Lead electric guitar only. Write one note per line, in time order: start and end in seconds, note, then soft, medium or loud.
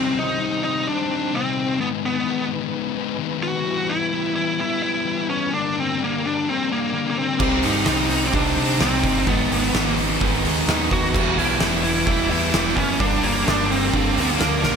0.00 0.18 C4 loud
0.19 0.63 D#4 loud
0.64 0.88 D#4 loud
0.88 1.35 D4 loud
1.35 1.80 C4 loud
1.81 1.87 B3 medium
2.06 2.48 B3 medium
3.43 3.91 F#4 loud
3.89 4.33 E4 loud
4.36 4.60 E4 loud
4.61 4.81 E4 loud
4.83 5.26 E4 loud
5.30 5.54 C#4 loud
5.54 5.78 D4 medium
5.80 6.02 C4 medium
6.04 6.26 A#3 medium
6.26 6.48 D4 medium
6.49 6.70 C4 medium
6.72 7.09 A#3 medium
7.10 7.17 A#3 medium
7.19 7.61 C4 medium
7.65 8.07 D#4 medium
8.10 8.25 D#4 medium
8.27 8.34 C4 medium
8.34 8.82 D4 loud
8.81 9.27 C4 medium
9.27 9.51 B3 medium
9.54 9.85 B3 medium
9.85 9.96 A#3 medium
10.93 11.38 F#4 loud
11.39 11.82 E4 loud
11.84 12.06 E4 loud
12.07 12.29 E4 loud
12.30 12.78 E4 loud
12.75 13.00 C#4 loud
13.00 13.24 D4 loud
13.23 13.48 A#3 medium
13.46 13.68 D4 medium
13.71 14.19 C4 medium
14.21 14.63 A#3 medium
14.39 14.62 A#4 medium
14.63 14.76 A#4 medium